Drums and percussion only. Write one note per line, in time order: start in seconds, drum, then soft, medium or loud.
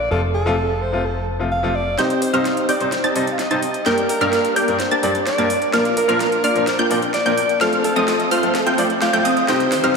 1.99 snare soft
1.99 closed hi-hat medium
2.10 closed hi-hat soft
2.22 open hi-hat loud
2.34 closed hi-hat soft
2.45 snare soft
2.45 closed hi-hat medium
2.57 closed hi-hat soft
2.69 open hi-hat medium
2.80 closed hi-hat soft
2.92 snare soft
2.92 closed hi-hat medium
3.04 closed hi-hat soft
3.16 open hi-hat loud
3.27 closed hi-hat soft
3.39 snare soft
3.39 closed hi-hat medium
3.51 closed hi-hat soft
3.63 open hi-hat medium
3.74 closed hi-hat soft
3.86 snare soft
3.86 closed hi-hat medium
3.98 closed hi-hat soft
4.09 open hi-hat loud
4.21 closed hi-hat soft
4.33 snare medium
4.33 closed hi-hat medium
4.45 closed hi-hat soft
4.56 open hi-hat medium
4.68 closed hi-hat soft
4.80 snare medium
4.80 closed hi-hat medium
4.91 closed hi-hat soft
5.03 open hi-hat loud
5.15 closed hi-hat soft
5.27 snare medium
5.27 closed hi-hat medium
5.38 closed hi-hat soft
5.50 open hi-hat medium
5.62 closed hi-hat soft
5.73 snare medium
5.73 closed hi-hat medium
5.85 closed hi-hat soft
5.97 open hi-hat loud
6.09 closed hi-hat soft
6.20 snare medium
6.20 closed hi-hat medium
6.32 closed hi-hat soft
6.44 open hi-hat medium
6.56 closed hi-hat soft
6.67 snare medium
6.67 closed hi-hat medium
6.79 closed hi-hat soft
6.91 open hi-hat loud
7.02 closed hi-hat soft
7.14 snare medium
7.14 closed hi-hat medium
7.26 closed hi-hat soft
7.38 open hi-hat medium
7.49 closed hi-hat soft
7.61 snare medium
7.61 closed hi-hat medium
7.73 closed hi-hat soft
7.84 open hi-hat loud
7.96 closed hi-hat soft
8.08 snare medium
8.08 closed hi-hat medium
8.20 closed hi-hat soft
8.31 open hi-hat medium
8.43 closed hi-hat soft
8.55 snare medium
8.55 closed hi-hat medium
8.66 closed hi-hat soft
8.78 open hi-hat loud
8.90 closed hi-hat soft
9.02 snare medium
9.02 closed hi-hat medium
9.13 closed hi-hat soft
9.25 open hi-hat medium
9.37 closed hi-hat soft
9.48 snare medium
9.48 closed hi-hat medium
9.60 closed hi-hat soft
9.72 snare medium
9.72 open hi-hat loud
9.84 closed hi-hat soft